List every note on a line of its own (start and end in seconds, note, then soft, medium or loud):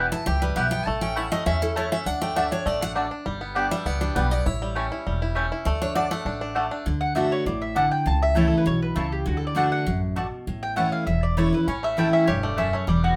0.00 0.39 E3 medium
0.00 0.24 B3 medium
0.00 0.12 E4 medium
0.12 0.54 E4 medium
0.12 0.26 A5 loud
0.26 0.52 C#2 medium
0.26 0.56 G4 medium
0.26 0.41 G5 loud
0.42 0.84 G3 medium
0.42 0.56 B4 medium
0.56 0.82 B1 medium
0.56 0.66 B3 medium
0.56 0.66 E4 medium
0.56 0.87 G4 medium
0.56 0.66 B4 loud
0.56 0.71 E5 medium
0.56 0.66 G5 loud
0.71 0.87 B3 medium
0.71 0.85 G5 loud
0.85 1.29 A1 medium
0.85 1.29 A3 medium
0.85 1.01 A5 loud
1.01 1.44 C#4 medium
1.01 1.16 G5 loud
1.16 1.25 A3 medium
1.16 1.26 E4 medium
1.16 1.59 E4 medium
1.16 1.26 C#5 medium
1.16 1.31 F#5 medium
1.16 1.26 A5 loud
1.32 1.74 A3 medium
1.32 1.46 D#5 loud
1.46 1.89 E2 medium
1.46 1.89 C#4 medium
1.46 1.61 E5 medium
1.62 2.04 E4 medium
1.62 1.76 A4 medium
1.76 1.85 A3 loud
1.76 2.06 A3 medium
1.76 1.86 E4 medium
1.76 1.86 C#5 medium
1.76 1.92 C#5 medium
1.76 1.86 A5 loud
1.92 2.06 C#4 medium
1.92 2.06 E5 loud
2.06 2.49 D2 medium
2.06 2.35 D4 medium
2.06 2.21 F#5 medium
2.21 2.63 A3 medium
2.21 2.36 G5 loud
2.36 2.45 A3 medium
2.36 2.50 D4 medium
2.36 2.46 F#4 loud
2.36 2.46 D5 loud
2.36 2.51 E5 medium
2.36 2.46 A5 medium
2.51 2.80 D4 medium
2.51 2.67 C#5 loud
2.66 3.09 A1 medium
2.66 3.08 A3 medium
2.66 2.81 D5 medium
2.81 2.94 D4 medium
2.81 2.91 F#5 loud
2.95 3.05 A3 medium
2.95 3.10 D4 medium
2.95 3.05 F#4 medium
2.95 3.05 D5 medium
2.95 3.06 A5 loud
3.11 3.26 D4 medium
3.26 3.69 G1 medium
3.26 3.68 G3 medium
3.41 3.83 B3 medium
3.55 3.65 B3 loud
3.55 3.98 D4 medium
3.55 3.65 G4 medium
3.55 3.65 D5 medium
3.55 3.65 G5 loud
3.71 4.13 G3 medium
3.71 3.86 E5 loud
3.86 4.11 C#2 medium
3.86 4.28 B3 medium
3.86 4.01 D5 medium
4.01 4.43 D4 medium
4.01 4.15 G4 medium
4.15 4.41 B1 medium
4.15 4.46 G3 medium
4.15 4.25 B3 medium
4.15 4.25 G4 medium
4.15 4.31 B4 medium
4.15 4.25 D5 medium
4.15 4.26 G5 loud
4.31 4.46 B3 medium
4.31 4.46 D5 loud
4.46 4.89 A1 loud
4.46 4.88 E4 medium
4.46 5.36 C#5 medium
4.62 5.03 G3 medium
4.75 4.85 A3 loud
4.75 5.18 C#4 medium
4.75 4.85 E4 medium
4.75 4.85 C#5 medium
4.75 4.86 G5 loud
4.92 5.21 E4 medium
5.07 5.49 E1 medium
5.07 5.49 G3 medium
5.22 5.51 E4 medium
5.35 5.45 A3 loud
5.35 5.66 C#4 medium
5.35 5.45 E4 loud
5.35 5.45 C#5 loud
5.35 5.45 G5 loud
5.52 5.66 E4 medium
5.65 6.09 D2 medium
5.65 6.08 A3 medium
5.65 5.81 D5 medium
5.82 5.95 D4 medium
5.82 5.95 C#5 medium
5.95 6.05 A3 medium
5.95 6.25 D4 medium
5.95 6.05 F#4 medium
5.95 6.11 D5 medium
5.95 6.05 D5 medium
5.95 6.05 A5 loud
6.11 6.53 A3 medium
6.11 6.74 F#5 loud
6.25 6.68 A1 medium
6.25 6.40 D4 medium
6.41 6.70 D4 medium
6.55 6.65 A3 medium
6.55 6.86 A3 medium
6.55 6.65 F#4 medium
6.55 6.65 D5 loud
6.55 6.65 A5 loud
6.71 6.86 D4 medium
6.86 7.29 D2 medium
6.86 7.14 D3 medium
7.01 7.15 F#5 medium
7.15 7.44 D3 medium
7.15 7.25 A3 medium
7.15 7.45 A3 medium
7.15 7.45 D4 loud
7.15 7.25 F#4 medium
7.15 7.45 F#4 medium
7.15 7.25 D5 medium
7.15 7.31 E5 medium
7.15 7.26 A5 medium
7.32 7.46 C#5 medium
7.46 7.89 A1 medium
7.46 7.75 A2 medium
7.46 7.61 D5 medium
7.62 7.76 E5 medium
7.75 8.05 D3 medium
7.75 7.85 A3 medium
7.75 7.85 F#4 medium
7.75 7.85 D5 loud
7.75 7.91 F#5 medium
7.75 7.85 A5 loud
7.91 8.06 G5 medium
8.06 8.49 C#2 medium
8.06 8.63 C#3 medium
8.06 8.22 A5 loud
8.23 8.36 E5 loud
8.35 8.64 E3 medium
8.35 8.45 A3 medium
8.35 8.65 A3 medium
8.35 8.65 C#4 medium
8.35 8.45 E4 loud
8.35 8.65 E4 medium
8.35 8.45 C#5 medium
8.35 8.47 C#5 medium
8.35 8.46 A5 medium
8.48 8.57 A4 medium
8.57 8.67 B4 medium
8.66 8.92 B1 medium
8.66 8.95 B2 medium
8.66 8.82 C#5 medium
8.82 8.96 B4 medium
8.95 9.22 C#2 medium
8.95 9.25 C#3 medium
8.95 9.05 A3 medium
8.95 9.05 E4 medium
8.95 9.12 A4 medium
8.95 9.06 C#5 loud
8.95 9.06 A5 loud
9.12 9.26 G4 medium
9.26 9.70 D2 medium
9.26 9.53 D3 medium
9.26 9.37 F#4 medium
9.37 9.46 A4 medium
9.47 9.57 D5 medium
9.55 9.84 D3 medium
9.55 9.85 A3 medium
9.55 9.66 A3 medium
9.55 9.85 D4 medium
9.55 9.66 F#4 medium
9.55 9.85 F#4 loud
9.55 9.66 D5 loud
9.55 9.71 F#5 medium
9.55 9.66 A5 loud
9.72 10.00 F#5 medium
9.87 10.30 A1 medium
9.87 10.15 F#2 medium
10.16 10.45 B2 medium
10.16 10.26 A3 medium
10.16 10.26 F#4 medium
10.16 10.26 D5 medium
10.16 10.26 A5 loud
10.47 10.90 A1 medium
10.47 11.05 A2 medium
10.63 10.76 G5 medium
10.76 11.05 E3 medium
10.76 10.86 A3 medium
10.76 11.06 A3 medium
10.76 11.06 C#4 medium
10.76 10.86 E4 medium
10.76 11.06 E4 medium
10.76 10.86 C#5 medium
10.76 10.92 F#5 medium
10.76 10.87 A5 loud
10.92 11.06 F5 medium
11.07 11.50 E1 medium
11.07 11.65 E2 medium
11.07 11.22 E5 medium
11.23 11.37 D5 medium
11.37 11.52 E3 medium
11.37 11.47 A3 medium
11.37 11.52 A3 medium
11.37 11.53 C#4 medium
11.37 11.47 E4 medium
11.37 11.51 E4 medium
11.37 11.47 C#5 loud
11.37 11.53 C#5 medium
11.37 11.47 A5 medium
11.52 11.68 C#4 medium
11.52 11.67 E4 medium
11.52 11.68 B4 medium
11.68 12.11 A1 medium
11.68 12.25 A2 medium
11.68 12.10 C#4 medium
11.68 11.83 C#5 medium
11.83 12.25 A3 medium
11.83 11.98 E5 loud
11.97 12.26 E3 medium
11.97 12.07 A3 medium
11.97 12.26 A3 medium
11.97 12.27 C#4 medium
11.97 12.07 E4 medium
11.97 13.16 E4 medium
11.97 12.27 E4 medium
11.97 12.07 C#5 medium
11.97 12.13 G5 loud
11.97 12.07 A5 medium
12.13 12.55 C#4 medium
12.13 12.27 E5 medium
12.27 12.71 E1 medium
12.27 12.56 G2 medium
12.27 12.70 G4 medium
12.27 12.43 C#5 medium
12.43 12.72 A3 medium
12.43 12.58 D5 medium
12.57 12.87 F#2 medium
12.57 12.67 A3 medium
12.57 12.89 C#4 medium
12.57 12.67 E4 medium
12.57 12.67 C#5 loud
12.57 12.73 E5 loud
12.57 12.67 A5 medium
12.73 12.88 A3 medium
12.73 12.88 C#5 medium
12.87 13.16 E1 medium
12.87 13.16 E2 medium
12.87 13.16 G3 medium
12.87 13.03 D5 medium
13.04 13.16 B3 medium
13.04 13.13 F#4 medium